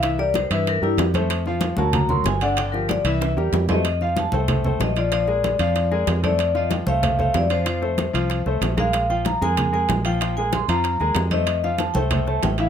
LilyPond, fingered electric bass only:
\new Staff \with { instrumentName = "Fingered electric bass" } { \clef bass \time 4/4 \key bes \major \tempo 4 = 189 c,4. g,4 g,8 f,4~ | f,4. d,4. g,,4~ | g,,4. c,4 e,8 f,4~ | f,4. c,4. bes,,4~ |
bes,,4. f,4. f,4~ | f,4. c,4. f,4~ | f,4. c,4 c,8 bes,,4~ | bes,,4. f,4. bes,,4~ |
bes,,4. f,4 ees,8 f,4~ | f,4. c,4. a,,4 | }